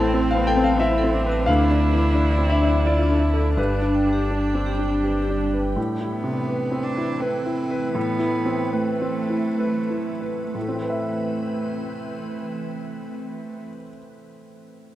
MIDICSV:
0, 0, Header, 1, 7, 480
1, 0, Start_track
1, 0, Key_signature, 0, "minor"
1, 0, Tempo, 669643
1, 1059, Time_signature, 3, 2, 24, 8
1, 1543, Tempo, 703400
1, 2023, Tempo, 726392
1, 4903, Tempo, 762389
1, 5863, Tempo, 863309
1, 6343, Tempo, 943396
1, 9064, End_track
2, 0, Start_track
2, 0, Title_t, "Vibraphone"
2, 0, Program_c, 0, 11
2, 222, Note_on_c, 0, 81, 49
2, 293, Note_off_c, 0, 81, 0
2, 344, Note_on_c, 0, 69, 70
2, 415, Note_off_c, 0, 69, 0
2, 473, Note_on_c, 0, 81, 51
2, 541, Note_off_c, 0, 81, 0
2, 592, Note_on_c, 0, 72, 48
2, 661, Note_off_c, 0, 72, 0
2, 703, Note_on_c, 0, 69, 64
2, 774, Note_off_c, 0, 69, 0
2, 943, Note_on_c, 0, 81, 51
2, 1013, Note_off_c, 0, 81, 0
2, 1058, Note_on_c, 0, 62, 66
2, 1129, Note_off_c, 0, 62, 0
2, 1183, Note_on_c, 0, 69, 45
2, 1254, Note_off_c, 0, 69, 0
2, 1296, Note_on_c, 0, 74, 46
2, 1370, Note_off_c, 0, 74, 0
2, 1419, Note_on_c, 0, 62, 59
2, 1493, Note_off_c, 0, 62, 0
2, 1664, Note_on_c, 0, 74, 44
2, 1735, Note_off_c, 0, 74, 0
2, 1778, Note_on_c, 0, 62, 62
2, 1851, Note_off_c, 0, 62, 0
2, 1902, Note_on_c, 0, 74, 42
2, 1975, Note_off_c, 0, 74, 0
2, 2018, Note_on_c, 0, 65, 39
2, 2090, Note_off_c, 0, 65, 0
2, 2139, Note_on_c, 0, 62, 51
2, 2210, Note_off_c, 0, 62, 0
2, 2381, Note_on_c, 0, 74, 40
2, 2452, Note_off_c, 0, 74, 0
2, 2497, Note_on_c, 0, 67, 48
2, 2571, Note_off_c, 0, 67, 0
2, 2620, Note_on_c, 0, 74, 37
2, 2693, Note_off_c, 0, 74, 0
2, 2741, Note_on_c, 0, 79, 36
2, 2814, Note_off_c, 0, 79, 0
2, 2862, Note_on_c, 0, 67, 51
2, 2935, Note_off_c, 0, 67, 0
2, 3099, Note_on_c, 0, 79, 34
2, 3173, Note_off_c, 0, 79, 0
2, 3216, Note_on_c, 0, 67, 52
2, 3291, Note_off_c, 0, 67, 0
2, 3342, Note_on_c, 0, 79, 35
2, 3415, Note_off_c, 0, 79, 0
2, 3463, Note_on_c, 0, 71, 32
2, 3536, Note_off_c, 0, 71, 0
2, 3585, Note_on_c, 0, 67, 48
2, 3659, Note_off_c, 0, 67, 0
2, 3833, Note_on_c, 0, 79, 34
2, 3904, Note_off_c, 0, 79, 0
2, 9064, End_track
3, 0, Start_track
3, 0, Title_t, "Grand piano"
3, 0, Program_c, 1, 0
3, 0, Control_c, 1, 64, 127
3, 0, Note_on_c, 1, 45, 62
3, 0, Note_on_c, 1, 60, 46
3, 0, Note_on_c, 1, 64, 48
3, 0, Note_on_c, 1, 81, 90
3, 99, Note_off_c, 1, 60, 0
3, 99, Note_on_c, 1, 60, 47
3, 192, Note_off_c, 1, 81, 0
3, 199, Note_off_c, 1, 64, 0
3, 220, Note_on_c, 1, 77, 70
3, 258, Note_on_c, 1, 59, 39
3, 332, Note_off_c, 1, 77, 0
3, 337, Note_on_c, 1, 79, 79
3, 355, Note_off_c, 1, 60, 0
3, 410, Note_on_c, 1, 60, 43
3, 419, Note_off_c, 1, 59, 0
3, 450, Note_off_c, 1, 79, 0
3, 458, Note_on_c, 1, 77, 68
3, 571, Note_off_c, 1, 77, 0
3, 571, Note_on_c, 1, 76, 72
3, 572, Note_on_c, 1, 64, 46
3, 671, Note_off_c, 1, 60, 0
3, 742, Note_on_c, 1, 60, 43
3, 832, Note_off_c, 1, 64, 0
3, 905, Note_on_c, 1, 71, 43
3, 996, Note_off_c, 1, 60, 0
3, 1025, Note_off_c, 1, 76, 0
3, 1032, Note_off_c, 1, 45, 0
3, 1048, Note_on_c, 1, 77, 76
3, 1061, Note_off_c, 1, 71, 0
3, 1064, Note_on_c, 1, 38, 58
3, 1073, Control_c, 1, 64, 0
3, 1192, Control_c, 1, 64, 127
3, 1222, Note_on_c, 1, 62, 39
3, 1383, Note_on_c, 1, 52, 39
3, 1479, Note_off_c, 1, 62, 0
3, 1536, Note_on_c, 1, 62, 40
3, 1639, Note_off_c, 1, 52, 0
3, 1699, Note_on_c, 1, 60, 33
3, 1749, Note_off_c, 1, 77, 0
3, 1777, Note_on_c, 1, 76, 61
3, 1794, Note_off_c, 1, 62, 0
3, 1861, Note_off_c, 1, 60, 0
3, 1861, Note_on_c, 1, 62, 38
3, 2004, Note_off_c, 1, 76, 0
3, 2020, Note_on_c, 1, 76, 39
3, 2029, Note_on_c, 1, 74, 58
3, 2117, Note_off_c, 1, 62, 0
3, 2186, Note_on_c, 1, 62, 37
3, 2273, Note_off_c, 1, 76, 0
3, 2341, Note_on_c, 1, 69, 38
3, 2437, Note_off_c, 1, 62, 0
3, 2475, Note_off_c, 1, 38, 0
3, 2476, Note_off_c, 1, 74, 0
3, 2495, Note_on_c, 1, 43, 44
3, 2500, Note_off_c, 1, 69, 0
3, 2501, Note_on_c, 1, 71, 50
3, 2513, Control_c, 1, 64, 0
3, 2632, Control_c, 1, 64, 127
3, 2658, Note_on_c, 1, 62, 33
3, 2825, Note_on_c, 1, 67, 34
3, 2918, Note_off_c, 1, 62, 0
3, 2981, Note_on_c, 1, 62, 32
3, 3082, Note_off_c, 1, 67, 0
3, 3139, Note_on_c, 1, 60, 28
3, 3240, Note_off_c, 1, 62, 0
3, 3296, Note_on_c, 1, 62, 32
3, 3302, Note_off_c, 1, 60, 0
3, 3465, Note_on_c, 1, 67, 31
3, 3557, Note_off_c, 1, 62, 0
3, 3633, Note_on_c, 1, 62, 31
3, 3683, Note_off_c, 1, 71, 0
3, 3724, Note_off_c, 1, 67, 0
3, 3793, Note_on_c, 1, 71, 31
3, 3889, Note_off_c, 1, 62, 0
3, 3921, Note_off_c, 1, 43, 0
3, 3945, Note_on_c, 1, 45, 43
3, 3952, Note_off_c, 1, 71, 0
3, 3961, Control_c, 1, 64, 0
3, 4057, Control_c, 1, 64, 127
3, 4104, Note_on_c, 1, 64, 34
3, 4258, Note_on_c, 1, 48, 34
3, 4360, Note_off_c, 1, 64, 0
3, 4418, Note_on_c, 1, 71, 34
3, 4515, Note_off_c, 1, 48, 0
3, 4573, Note_on_c, 1, 60, 33
3, 4674, Note_off_c, 1, 71, 0
3, 4742, Note_on_c, 1, 64, 36
3, 4833, Note_off_c, 1, 60, 0
3, 4906, Note_on_c, 1, 71, 42
3, 4995, Note_off_c, 1, 64, 0
3, 5057, Note_on_c, 1, 64, 39
3, 5152, Note_off_c, 1, 71, 0
3, 5216, Note_on_c, 1, 71, 44
3, 5306, Note_off_c, 1, 64, 0
3, 5341, Note_off_c, 1, 45, 0
3, 5365, Note_on_c, 1, 45, 55
3, 5383, Control_c, 1, 64, 0
3, 5466, Note_off_c, 1, 71, 0
3, 5500, Control_c, 1, 64, 127
3, 5517, Note_on_c, 1, 64, 39
3, 5685, Note_on_c, 1, 60, 42
3, 5788, Note_off_c, 1, 64, 0
3, 5857, Note_on_c, 1, 71, 41
3, 5952, Note_off_c, 1, 60, 0
3, 6016, Note_on_c, 1, 60, 37
3, 6111, Note_off_c, 1, 71, 0
3, 6172, Note_on_c, 1, 64, 35
3, 6275, Note_off_c, 1, 60, 0
3, 6337, Note_on_c, 1, 71, 36
3, 6433, Note_off_c, 1, 64, 0
3, 6494, Note_on_c, 1, 64, 30
3, 6594, Note_off_c, 1, 71, 0
3, 6653, Note_on_c, 1, 71, 28
3, 6757, Note_off_c, 1, 64, 0
3, 6802, Note_off_c, 1, 45, 0
3, 6819, Note_off_c, 1, 71, 0
3, 6823, Note_on_c, 1, 45, 32
3, 6838, Control_c, 1, 64, 0
3, 6859, Note_on_c, 1, 57, 33
3, 6894, Note_on_c, 1, 60, 32
3, 6929, Note_on_c, 1, 64, 34
3, 6936, Control_c, 1, 64, 127
3, 6966, Note_on_c, 1, 71, 32
3, 7003, Note_on_c, 1, 76, 33
3, 8380, Note_off_c, 1, 45, 0
3, 8416, Note_off_c, 1, 57, 0
3, 8451, Note_off_c, 1, 60, 0
3, 8486, Note_off_c, 1, 64, 0
3, 8522, Note_off_c, 1, 71, 0
3, 8559, Note_off_c, 1, 76, 0
3, 9064, End_track
4, 0, Start_track
4, 0, Title_t, "Viola"
4, 0, Program_c, 2, 41
4, 0, Note_on_c, 2, 60, 59
4, 1060, Note_on_c, 2, 64, 51
4, 1071, Note_off_c, 2, 60, 0
4, 2500, Note_off_c, 2, 64, 0
4, 2504, Note_on_c, 2, 62, 41
4, 3786, Note_off_c, 2, 62, 0
4, 9064, End_track
5, 0, Start_track
5, 0, Title_t, "Ambient pad"
5, 0, Program_c, 3, 92
5, 0, Note_on_c, 3, 60, 59
5, 0, Note_on_c, 3, 71, 66
5, 1064, Note_off_c, 3, 71, 0
5, 1065, Note_off_c, 3, 60, 0
5, 1069, Note_on_c, 3, 62, 56
5, 1076, Note_on_c, 3, 69, 51
5, 2490, Note_on_c, 3, 67, 54
5, 2494, Note_on_c, 3, 55, 50
5, 2507, Note_off_c, 3, 69, 0
5, 3945, Note_off_c, 3, 67, 0
5, 3947, Note_off_c, 3, 55, 0
5, 3954, Note_off_c, 3, 62, 0
5, 3963, Note_on_c, 3, 57, 51
5, 3970, Note_on_c, 3, 71, 47
5, 3972, Note_on_c, 3, 52, 52
5, 6808, Note_off_c, 3, 57, 0
5, 6811, Note_off_c, 3, 71, 0
5, 6812, Note_off_c, 3, 52, 0
5, 6829, Note_on_c, 3, 60, 44
5, 6830, Note_on_c, 3, 71, 45
5, 6833, Note_on_c, 3, 52, 46
5, 8386, Note_off_c, 3, 60, 0
5, 8386, Note_off_c, 3, 71, 0
5, 8390, Note_off_c, 3, 52, 0
5, 9064, End_track
6, 0, Start_track
6, 0, Title_t, "Cello"
6, 0, Program_c, 4, 42
6, 0, Note_on_c, 4, 60, 62
6, 583, Note_on_c, 4, 64, 59
6, 594, Note_off_c, 4, 60, 0
6, 816, Note_on_c, 4, 62, 61
6, 826, Note_off_c, 4, 64, 0
6, 2021, Note_on_c, 4, 65, 50
6, 2031, Note_off_c, 4, 62, 0
6, 2268, Note_on_c, 4, 64, 44
6, 2277, Note_off_c, 4, 65, 0
6, 2503, Note_off_c, 4, 64, 0
6, 2513, Note_on_c, 4, 62, 44
6, 3691, Note_off_c, 4, 62, 0
6, 4189, Note_on_c, 4, 59, 55
6, 4652, Note_on_c, 4, 62, 60
6, 4662, Note_off_c, 4, 59, 0
6, 4899, Note_on_c, 4, 60, 57
6, 4909, Note_off_c, 4, 62, 0
6, 5367, Note_off_c, 4, 60, 0
6, 5371, Note_on_c, 4, 59, 69
6, 5863, Note_on_c, 4, 57, 67
6, 5872, Note_off_c, 4, 59, 0
6, 6818, Note_off_c, 4, 57, 0
6, 6821, Note_on_c, 4, 57, 43
6, 8378, Note_off_c, 4, 57, 0
6, 9064, End_track
7, 0, Start_track
7, 0, Title_t, "Sub bass"
7, 0, Program_c, 5, 38
7, 0, Note_on_c, 5, 33, 72
7, 1056, Note_on_c, 5, 38, 63
7, 1067, Note_off_c, 5, 33, 0
7, 2496, Note_on_c, 5, 31, 63
7, 2506, Note_off_c, 5, 38, 0
7, 3948, Note_off_c, 5, 31, 0
7, 9064, End_track
0, 0, End_of_file